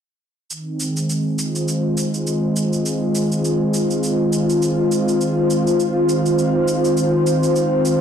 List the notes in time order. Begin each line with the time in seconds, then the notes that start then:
0.50 D#3, cabasa
0.58 C4
0.73 G#3
0.80 cabasa
0.97 cabasa
1.10 cabasa
1.34 F4
1.39 C5, cabasa
1.55 cabasa
1.68 cabasa
1.97 cabasa
2.14 cabasa
2.27 cabasa
2.56 cabasa
2.73 cabasa
2.86 cabasa
3.15 cabasa
3.32 cabasa
3.45 cabasa
3.74 cabasa
3.91 cabasa
4.03 cabasa
4.33 cabasa
4.50 cabasa
4.62 cabasa
4.92 cabasa
5.08 cabasa
5.21 cabasa
5.50 cabasa
5.67 cabasa
5.80 cabasa
6.09 cabasa
6.26 cabasa
6.39 cabasa
6.68 cabasa
6.85 cabasa
6.97 cabasa
7.27 cabasa
7.43 cabasa
7.56 cabasa
7.85 cabasa